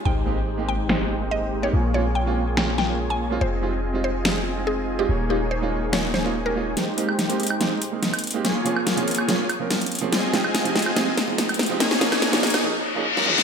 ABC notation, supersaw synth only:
X:1
M:4/4
L:1/8
Q:1/4=143
K:Ab
V:1 name="Supersaw synth"
[A,EGcg]8 | [B,FAda]8 | [CFAea]8 | [B,EAda]8 |
[A,EGcg]3 [A,EGcg]2 z3 | [B,FAda]3 [B,FAda]2 z3 | [CFAea]3 [CFAea]2 z3 | [B,EAda]3 [B,EAda] z4 |]